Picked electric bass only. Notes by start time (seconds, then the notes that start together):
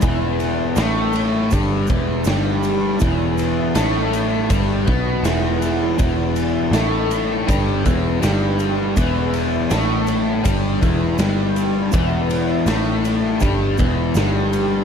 0.03 E1
0.77 A1
1.53 G1
1.90 E1
2.26 G1
3.02 E1
3.76 A1
4.50 G1
4.88 B1
5.23 E1
6.00 E1
6.71 A1
7.49 G1
7.86 E1
8.23 G1
8.97 E1
9.71 A1
10.46 G1
10.82 E1
11.19 G1
11.93 E1
12.66 A1
13.42 G1
13.80 E1
14.15 G1